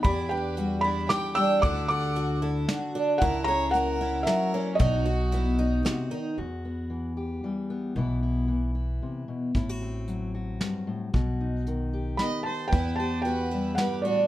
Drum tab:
HH |x-x-x-|x-x-x-|x-x-x-|x-x-x-|
SD |----o-|----o-|----o-|----o-|
BD |o-----|o-----|o-----|o-----|

HH |------|------|x-x-x-|x-x-x-|
SD |------|------|----o-|----o-|
BD |------|------|o-----|o-----|

HH |x-x-x-|
SD |----o-|
BD |o-----|